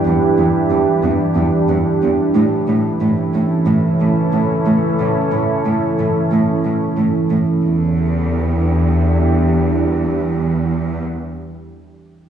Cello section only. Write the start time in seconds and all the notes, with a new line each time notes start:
0.05 E2
0.38 E2
0.71 E2
1.03 E2
1.36 E2
1.69 E2
2.03 E2
2.35 A2
2.68 A2
3.01 A2
3.34 A2
3.67 A2
4.00 A2
4.33 A2
4.66 A2
4.99 A2
5.32 A2
5.65 A2
5.98 A2
6.32 A2
6.65 A2
6.97 A2
7.30 A2
7.63 E2